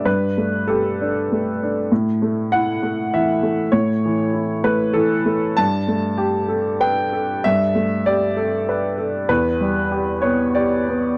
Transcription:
<<
  \new Staff \with { instrumentName = "Upright piano" } { \time 3/4 \key g \lydian \tempo 4 = 97 b'4 a'4. r8 | r4 fis''4 e''4 | cis''4. b'8 a'4 | a''2 g''4 |
e''4 d''2 | b'4. cis''8 d''4 | }
  \new Staff \with { instrumentName = "Upright piano" } { \time 3/4 \key g \lydian <g, d'>8 a8 g'8 d'8 a8 d'8 | a,8 a8 e'8 a8 e8 a8 | a,8 e8 e'8 a8 e8 a8 | g,8 a8 g'8 a'8 b'8 a'8 |
g,8 a8 g'8 a'8 b'8 a'8 | e,8 g8 g'8 b8 g'8 b8 | }
>>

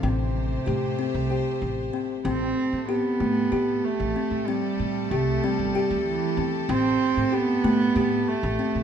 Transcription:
<<
  \new Staff \with { instrumentName = "String section" } { \time 7/8 \key a \minor \tempo 4 = 95 <a g' c''>2.~ <a g' c''>8 | <a g' a'>2.~ <a g' a'>8~ | <a g' a'>2.~ <a g' a'>8~ | <a g' a'>2.~ <a g' a'>8 | }
  \new Staff \with { instrumentName = "Kalimba" } { \time 7/8 \key a \minor c'4 g'8 c'8 g'4 c'8 | c'4 g'8 a8 g'4 c'8 | c'4 g'8 c'8 g'4 c'8 | c'4 g'8 a8 g'4 c'8 | }
  \new Staff \with { instrumentName = "Cello" } { \time 7/8 \key a \minor c2~ c8 r4 | c'4 b4. a4 | g4 a8 g4 e8. r16 | c'4 b4. a4 | }
  \new Staff \with { instrumentName = "Upright bass" } { \clef bass \time 7/8 \key a \minor a,,4 a,8 r16 c,8 r16 a,,8 r8 | a,,8 r16 a,8 r16 a,8 a,8 r16 a,,16 r16 a,16~ | a,16 r16 a,8 c,8 r16 g,,16 r16 d,8 r16 e,16 r16 | a,,8 r16 a,8 r16 a,8 a,8 r16 a,,16 r16 a,16 | }
>>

